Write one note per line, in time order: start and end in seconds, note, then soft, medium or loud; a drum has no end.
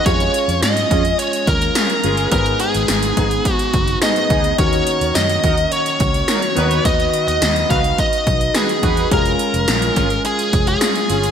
0.05 0.27 F2 loud
0.05 4.55 G#3 medium
0.05 2.28 C#4 medium
0.05 2.30 C#4 medium
0.05 2.28 F4 medium
0.05 2.30 F4 medium
0.05 2.29 G#4 medium
0.05 0.59 C#5 loud
0.05 2.29 C#5 medium
0.05 kick loud
0.05 closed hi-hat medium
0.20 closed hi-hat soft
0.34 closed hi-hat medium
0.48 0.59 F2 loud
0.48 closed hi-hat medium
0.62 0.84 G#2 loud
0.62 1.19 D#5 loud
0.62 snare loud
0.62 closed hi-hat medium
0.62 tambourine medium
0.77 closed hi-hat medium
0.90 1.12 F2 medium
0.90 1.03 C#4 medium
0.90 1.03 F4 medium
0.90 1.03 G#4 medium
0.90 kick loud
0.90 closed hi-hat medium
1.05 closed hi-hat medium
1.19 1.48 C#5 loud
1.19 closed hi-hat medium
1.33 closed hi-hat medium
1.47 1.69 D#2 medium
1.47 2.28 A#4 medium
1.47 kick medium
1.47 closed hi-hat medium
1.62 closed hi-hat medium
1.75 1.88 C#4 medium
1.75 1.88 F4 medium
1.75 1.87 G#4 medium
1.75 snare loud
1.75 closed hi-hat medium
1.75 tambourine medium
1.90 closed hi-hat medium
2.03 2.25 G1 medium
2.03 2.28 C#4 medium
2.03 2.28 F4 medium
2.03 2.28 G#4 loud
2.03 closed hi-hat medium
2.17 closed hi-hat medium
2.31 2.53 G#1 loud
2.31 3.13 G#2 medium
2.31 3.98 B3 medium
2.31 4.56 B3 medium
2.31 3.98 D#4 medium
2.31 4.56 D#4 medium
2.31 3.99 G#4 medium
2.31 2.60 A#4 loud
2.31 3.99 B4 medium
2.31 kick loud
2.31 closed hi-hat loud
2.46 closed hi-hat soft
2.60 3.53 G#4 loud
2.60 closed hi-hat medium
2.74 2.85 G#1 loud
2.74 closed hi-hat medium
2.88 3.10 G#1 loud
2.88 snare loud
2.88 closed hi-hat medium
2.88 tambourine medium
3.03 closed hi-hat medium
3.17 3.39 G#1 medium
3.17 3.29 B3 medium
3.17 3.29 D#4 medium
3.17 3.29 G#4 medium
3.17 kick medium
3.17 closed hi-hat medium
3.31 closed hi-hat medium
3.45 kick medium
3.45 closed hi-hat medium
3.53 3.98 F#4 loud
3.59 closed hi-hat medium
3.74 3.95 F#1 medium
3.74 kick loud
3.74 closed hi-hat medium
3.88 closed hi-hat medium
4.01 4.58 B3 soft
4.01 4.14 B3 medium
4.01 4.14 D#4 medium
4.01 4.57 D#4 soft
4.01 4.14 G#4 medium
4.01 4.59 G#4 soft
4.01 4.59 B4 medium
4.01 4.55 D#5 medium
4.01 snare loud
4.01 closed hi-hat medium
4.01 tambourine medium
4.16 closed hi-hat medium
4.30 4.52 D2 medium
4.30 4.54 B3 loud
4.30 4.54 D#4 medium
4.30 4.54 G#4 loud
4.30 kick loud
4.30 closed hi-hat medium
4.44 closed hi-hat medium
4.58 4.80 D#2 loud
4.58 9.07 D#3 medium
4.58 5.40 D#3 medium
4.58 6.55 A#3 medium
4.58 6.52 C#4 medium
4.58 6.55 C#4 medium
4.58 6.53 D#4 medium
4.58 9.07 F#4 medium
4.58 6.53 F#4 medium
4.58 6.54 A#4 medium
4.58 5.15 C#5 loud
4.58 kick loud
4.58 closed hi-hat medium
4.73 closed hi-hat soft
4.87 closed hi-hat medium
5.01 5.12 D#2 medium
5.01 closed hi-hat medium
5.15 5.37 F#2 medium
5.15 5.72 D#5 medium
5.15 snare loud
5.15 closed hi-hat medium
5.15 tambourine medium
5.29 closed hi-hat medium
5.44 5.65 D#2 medium
5.44 5.56 D#4 medium
5.44 5.56 F#4 medium
5.44 5.56 A#4 loud
5.44 kick medium
5.44 closed hi-hat medium
5.58 closed hi-hat medium
5.72 6.85 C#5 loud
5.72 closed hi-hat medium
5.86 closed hi-hat medium
6.00 6.22 C#2 medium
6.00 kick loud
6.00 closed hi-hat medium
6.14 closed hi-hat medium
6.28 6.41 D#4 medium
6.28 6.41 F#4 medium
6.28 6.41 A#4 medium
6.28 snare loud
6.28 closed hi-hat medium
6.28 tambourine medium
6.42 closed hi-hat medium
6.55 6.78 D#2 medium
6.55 7.38 D#3 medium
6.55 8.78 B3 medium
6.55 8.79 D#4 medium
6.55 6.81 D#4 loud
6.55 9.09 D#4 medium
6.55 6.81 F#4 medium
6.55 8.79 F#4 medium
6.55 9.09 B4 medium
6.55 6.81 B4 loud
6.55 8.80 B4 medium
6.55 closed hi-hat medium
6.71 closed hi-hat soft
6.85 7.06 D#2 loud
6.85 7.27 D#5 loud
6.85 kick loud
6.85 closed hi-hat medium
7.00 closed hi-hat soft
7.13 closed hi-hat medium
7.28 7.38 D#2 medium
7.28 7.67 D#5 loud
7.28 closed hi-hat medium
7.42 7.63 D#2 loud
7.42 snare loud
7.42 closed hi-hat medium
7.42 tambourine medium
7.56 closed hi-hat medium
7.70 7.92 C#2 medium
7.70 7.82 D#4 medium
7.70 7.82 F#4 medium
7.70 7.82 B4 medium
7.70 7.96 F5 loud
7.70 kick medium
7.70 closed hi-hat medium
7.84 closed hi-hat medium
7.98 8.57 D#5 loud
7.98 kick medium
7.98 closed hi-hat medium
8.13 closed hi-hat medium
8.27 8.48 B1 medium
8.27 kick loud
8.27 closed hi-hat medium
8.41 closed hi-hat medium
8.54 8.67 D#4 medium
8.54 8.67 F#4 medium
8.54 9.08 G#4 medium
8.54 8.67 B4 medium
8.54 snare loud
8.54 closed hi-hat medium
8.54 tambourine medium
8.69 closed hi-hat medium
8.83 9.04 E2 medium
8.83 9.07 D#4 loud
8.83 9.07 F#4 loud
8.83 9.07 B4 loud
8.83 kick loud
8.83 closed hi-hat medium
8.97 closed hi-hat medium
9.11 9.33 F1 loud
9.11 11.31 G#3 medium
9.11 11.31 C#4 medium
9.11 11.31 F4 medium
9.11 11.31 G#4 medium
9.11 10.22 A#4 loud
9.11 kick loud
9.11 closed hi-hat medium
9.26 closed hi-hat soft
9.39 closed hi-hat medium
9.54 9.65 F1 medium
9.54 closed hi-hat medium
9.68 9.89 A#1 loud
9.68 snare loud
9.68 closed hi-hat medium
9.68 tambourine medium
9.82 closed hi-hat medium
9.96 10.18 G#1 medium
9.96 10.08 C#4 medium
9.96 10.08 F4 medium
9.96 10.08 G#4 loud
9.96 kick loud
9.96 closed hi-hat medium
10.10 closed hi-hat medium
10.25 10.67 G#4 loud
10.25 closed hi-hat medium
10.39 closed hi-hat medium
10.53 10.74 F1 medium
10.53 kick loud
10.53 closed hi-hat medium
10.67 11.31 G#4 medium
10.67 closed hi-hat medium
10.81 10.93 C#4 medium
10.81 10.93 F4 medium
10.81 10.93 G#4 medium
10.81 snare loud
10.81 closed hi-hat medium
10.81 tambourine medium
10.96 closed hi-hat medium
11.10 11.31 G1 medium
11.10 11.31 C#4 medium
11.10 11.31 F4 medium
11.10 11.31 G#4 loud
11.10 closed hi-hat medium
11.23 closed hi-hat medium